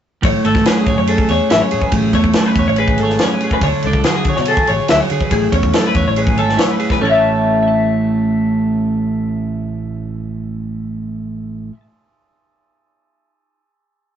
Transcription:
0.22 0.33 A1 medium
0.22 1.90 A2 medium
0.22 0.45 C#5 medium
0.22 kick medium
0.22 ride medium
0.44 0.63 G#1 medium
0.44 2.13 A3 medium
0.44 0.66 A4 medium
0.44 ride medium
0.55 kick medium
0.55 snare soft
0.66 1.49 C#4 medium
0.66 0.76 G#4 medium
0.66 snare loud
0.66 ride medium
0.77 0.98 G#4 medium
0.86 0.96 A2 medium
0.86 1.29 C#5 medium
0.86 kick medium
0.86 ride medium
0.98 1.17 F#2 medium
0.98 1.09 C#5 medium
1.07 1.71 G#4 medium
1.07 1.30 A4 medium
1.07 ride medium
1.18 kick medium
1.29 1.39 E2 medium
1.29 2.59 C#5 medium
1.29 1.51 C#5 medium
1.29 ride medium
1.50 1.60 A1 medium
1.50 2.36 C#4 medium
1.50 1.61 E5 medium
1.50 snare loud
1.50 ride medium
1.62 1.83 C#5 medium
1.71 1.82 A2 medium
1.71 1.95 G#4 medium
1.71 ride medium
1.82 1.93 B4 medium
1.82 kick medium
1.92 2.11 A1 medium
1.92 3.61 A2 medium
1.92 2.14 G#4 medium
1.92 kick medium
1.92 ride medium
2.13 2.32 E2 medium
2.13 3.86 A3 medium
2.13 2.35 C#5 medium
2.13 kick medium
2.13 ride medium
2.24 kick medium
2.33 3.22 C#4 medium
2.33 2.46 A4 medium
2.33 snare loud
2.33 ride medium
2.46 2.67 B4 medium
2.55 2.65 E2 medium
2.55 3.03 C#5 medium
2.55 kick medium
2.55 ride soft
2.68 3.00 A1 medium
2.68 2.78 C#5 medium
2.76 3.44 G#4 medium
2.76 2.99 B4 medium
2.76 ride medium
2.88 kick medium
2.98 3.18 G#1 medium
2.98 3.22 A4 medium
2.98 ride soft
3.03 3.66 C#5 medium
3.10 snare soft
3.19 3.66 C#4 medium
3.19 3.32 C#5 medium
3.19 snare loud
3.19 ride medium
3.32 3.52 B4 medium
3.41 3.66 G#4 soft
3.41 ride medium
3.51 3.63 B4 medium
3.51 kick medium
3.61 3.71 D2 medium
3.61 5.32 D3 medium
3.61 3.84 C#5 medium
3.61 kick medium
3.61 ride medium
3.83 4.02 C#2 medium
3.83 4.05 A4 medium
3.83 ride medium
3.87 5.31 D4 medium
3.93 kick medium
4.04 4.15 G#4 medium
4.04 snare medium
4.04 ride medium
4.08 4.90 F#4 medium
4.16 4.36 G#4 medium
4.25 4.35 D3 medium
4.25 kick medium
4.25 ride medium
4.29 4.68 C#5 medium
4.36 4.56 B2 medium
4.36 4.47 C#5 medium
4.36 snare soft
4.45 5.11 G#4 medium
4.45 4.69 A4 medium
4.45 ride medium
4.57 kick medium
4.67 4.78 A1 medium
4.67 5.96 C#5 soft
4.67 4.90 C#5 medium
4.67 ride medium
4.88 5.00 D2 medium
4.88 5.30 F#4 soft
4.88 5.00 E5 medium
4.88 snare loud
4.88 ride medium
5.01 5.21 C#5 medium
5.10 5.20 D3 medium
5.10 5.34 G#4 medium
5.10 ride medium
5.21 5.31 B4 medium
5.21 kick medium
5.31 5.50 A1 medium
5.31 6.99 A2 medium
5.31 5.53 G#4 medium
5.31 kick medium
5.31 ride medium
5.52 5.71 E2 medium
5.52 6.98 C#4 medium
5.52 5.75 C#5 medium
5.52 kick medium
5.52 ride medium
5.63 kick medium
5.73 6.56 E4 medium
5.73 5.85 A4 medium
5.73 snare loud
5.73 ride medium
5.87 6.07 B4 medium
5.95 6.04 E2 medium
5.95 6.36 C#5 medium
5.95 kick medium
5.95 ride medium
6.07 6.39 A1 medium
6.07 6.18 C#5 medium
6.16 6.78 G#4 medium
6.16 6.38 B4 medium
6.16 ride medium
6.27 kick medium
6.38 6.57 G#1 medium
6.38 6.59 A4 medium
6.38 6.98 C#5 soft
6.38 ride soft
6.49 snare soft
6.57 6.97 E4 medium
6.57 6.70 C#5 medium
6.57 snare loud
6.57 ride medium
6.70 6.90 B4 medium
6.80 6.98 G#4 soft
6.80 ride medium
6.90 7.02 B4 medium
6.90 kick medium
6.90 snare soft
7.00 11.69 A1 medium
7.00 11.71 A2 medium
7.00 11.72 C#4 medium
7.00 11.74 E4 medium
7.00 7.05 A4 medium
7.05 7.13 C#5 medium
7.05 7.67 C#5 soft
7.10 11.77 E5 medium
7.10 11.80 A5 medium
7.63 11.87 E5 medium
7.68 11.90 A5 medium

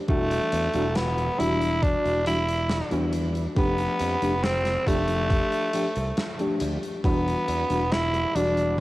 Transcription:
0.08 0.38 E1 medium
0.08 0.68 E3 medium
0.08 0.69 G3 medium
0.08 0.97 A3 loud
0.08 0.69 D4 medium
0.08 0.69 F#4 medium
0.08 kick loud
0.08 closed hi-hat medium
0.31 closed hi-hat medium
0.52 0.67 E2 medium
0.52 closed hi-hat medium
0.74 1.28 E1 medium
0.74 0.85 E3 medium
0.74 0.86 G3 medium
0.74 0.86 D4 medium
0.74 0.86 F#4 medium
0.74 closed hi-hat medium
0.95 1.41 B3 loud
0.95 snare loud
0.95 closed hi-hat medium
1.18 closed hi-hat medium
1.38 1.94 E1 medium
1.38 2.20 E3 medium
1.38 2.21 G3 medium
1.38 2.21 D4 medium
1.38 1.84 E4 loud
1.38 2.21 F#4 loud
1.38 closed hi-hat medium
1.61 closed hi-hat medium
1.83 2.26 D4 loud
1.83 kick loud
1.83 closed hi-hat medium
2.05 2.80 E1 medium
2.05 closed hi-hat soft
2.25 2.38 E3 medium
2.25 2.38 G3 medium
2.25 2.38 D4 medium
2.25 3.10 E4 loud
2.25 2.38 F#4 medium
2.25 closed hi-hat medium
2.48 closed hi-hat medium
2.69 snare loud
2.69 closed hi-hat medium
2.90 3.46 E2 medium
2.90 3.51 E3 medium
2.90 3.51 G3 medium
2.90 3.51 D4 medium
2.90 3.52 F#4 medium
2.90 closed hi-hat medium
3.13 closed hi-hat medium
3.35 closed hi-hat medium
3.55 3.86 F1 medium
3.55 4.16 F3 medium
3.55 4.16 A3 medium
3.55 4.45 B3 loud
3.55 4.17 D4 medium
3.55 4.17 G4 medium
3.55 kick loud
3.55 closed hi-hat medium
3.78 closed hi-hat medium
3.99 4.15 F2 medium
3.99 closed hi-hat medium
4.21 4.76 F1 medium
4.21 4.33 F3 medium
4.21 4.33 A3 medium
4.21 4.34 D4 medium
4.21 4.34 G4 medium
4.21 closed hi-hat medium
4.44 4.89 C4 loud
4.44 snare loud
4.44 closed hi-hat medium
4.65 snare soft
4.65 closed hi-hat medium
4.86 5.41 F1 medium
4.86 5.69 F3 medium
4.86 5.69 A3 medium
4.86 6.61 A3 loud
4.86 5.69 D4 medium
4.86 5.69 G4 loud
4.86 kick medium
4.86 closed hi-hat loud
5.08 closed hi-hat medium
5.30 kick loud
5.30 closed hi-hat medium
5.52 closed hi-hat medium
5.73 5.85 F3 medium
5.73 5.86 A3 medium
5.73 5.86 D4 medium
5.73 5.86 G4 medium
5.73 closed hi-hat medium
5.96 6.11 C2 medium
5.96 closed hi-hat medium
6.17 snare loud
6.17 closed hi-hat medium
6.39 6.99 F3 medium
6.39 6.99 A3 medium
6.39 7.00 D4 medium
6.39 7.00 G4 medium
6.39 closed hi-hat medium
6.60 6.76 D2 loud
6.60 closed hi-hat loud
6.83 closed hi-hat medium
7.04 7.34 E1 medium
7.04 7.64 E3 medium
7.04 7.65 G3 medium
7.04 7.94 B3 loud
7.04 7.65 D4 medium
7.04 7.65 F#4 medium
7.04 kick loud
7.04 closed hi-hat medium
7.28 closed hi-hat medium
7.48 7.63 E2 medium
7.48 closed hi-hat medium
7.70 8.24 E1 medium
7.70 7.81 E3 medium
7.70 7.82 G3 medium
7.70 7.82 D4 medium
7.70 7.82 F#4 medium
7.70 closed hi-hat medium
7.92 8.37 E4 loud
7.92 snare loud
7.92 closed hi-hat medium
8.14 closed hi-hat medium
8.35 8.80 E1 medium
8.35 8.80 E3 medium
8.35 8.80 G3 medium
8.35 8.80 D4 medium
8.35 8.80 F#4 loud
8.35 closed hi-hat loud
8.57 closed hi-hat medium

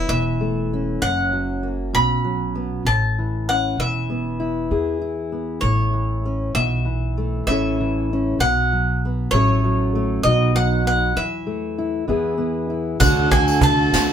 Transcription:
0.09 0.97 E1 medium
0.09 1.02 E3 medium
0.09 1.04 E5 medium
0.41 1.02 A3 soft
0.73 2.87 C#4 soft
1.02 1.90 F#1 medium
1.02 1.94 F#2 medium
1.02 1.67 F#5 medium
1.32 1.90 F#3 medium
1.63 1.90 A#3 soft
1.93 2.82 B1 medium
1.93 2.86 B2 medium
1.93 2.86 B5 medium
2.24 2.82 F#3 soft
2.55 2.82 B3 soft
2.85 3.74 A1 medium
2.85 3.75 A2 medium
2.85 3.48 A5 medium
3.19 3.79 E3 soft
3.49 3.76 C#4 soft
3.49 3.80 F#5 medium
3.77 4.66 E1 medium
3.77 5.92 E3 medium
3.77 5.29 E5 medium
4.10 5.31 B3 soft
4.40 5.01 E4 soft
4.71 5.59 E2 medium
4.71 5.59 G#4 soft
5.02 7.50 E4 soft
5.32 5.59 B3 soft
5.61 6.51 A1 medium
5.61 6.51 A2 medium
5.61 6.54 C#5 medium
5.93 6.84 E3 soft
6.26 6.52 C#4 soft
6.55 7.43 B1 medium
6.55 6.85 B2 medium
6.55 7.43 E5 medium
6.85 7.47 E3 medium
7.18 7.48 A3 soft
7.47 8.35 A1 medium
7.47 8.36 A2 medium
7.47 7.79 E3 medium
7.47 8.10 C#4 medium
7.47 8.37 E4 medium
7.47 8.42 E5 medium
7.51 8.38 A4 medium
7.80 8.41 E3 medium
8.13 8.38 C#4 medium
8.39 9.27 B1 medium
8.39 9.32 B2 medium
8.39 9.05 F#5 medium
8.72 9.29 F#3 soft
9.05 9.30 B3 soft
9.31 10.20 A1 medium
9.31 10.21 A2 medium
9.31 9.63 F#3 medium
9.31 9.94 A3 medium
9.31 10.23 C#5 medium
9.36 10.26 C#4 soft
9.36 10.22 A4 medium
9.64 10.21 F#3 medium
9.95 10.25 A3 medium
10.23 11.12 B1 medium
10.23 11.17 B2 medium
10.23 10.54 F#3 soft
10.23 10.84 B3 soft
10.23 11.14 D#4 soft
10.23 10.52 D#5 medium
10.28 11.18 F#4 medium
10.55 11.13 F#3 medium
10.55 10.86 F#5 medium
10.85 11.12 B3 soft
10.85 11.18 F#5 medium
11.16 12.04 E2 medium
11.16 12.06 E3 medium
11.16 12.66 E5 medium
11.47 12.08 A3 soft
11.78 12.05 E4 soft
12.08 12.97 E2 medium
12.08 13.00 E3 medium
12.08 12.36 B3 soft
12.08 12.69 E4 soft
12.08 12.98 G#4 medium
12.38 12.96 B3 soft
12.70 12.97 E4 soft
13.00 13.89 D2 medium
13.00 13.93 D3 medium
13.00 14.13 A3 medium
13.00 13.31 D4 medium
13.00 13.63 F#4 medium
13.00 14.13 A4 medium
13.00 13.31 F#5 medium
13.00 cajon bass medium
13.00 kick medium
13.00 ride medium
13.00 tambourine medium
13.31 14.13 D4 soft
13.31 13.63 G#5 medium
13.31 kick medium
13.31 cajon slap medium
13.31 ride medium
13.48 tambourine medium
13.61 14.13 F#4 medium
13.61 14.13 A5 medium
13.61 cajon bass medium
13.61 ride soft
13.93 14.13 D2 medium
13.93 muted steel-string acoustic guitar stroke medium
13.93 snare medium
13.93 ride medium
13.93 tambourine medium

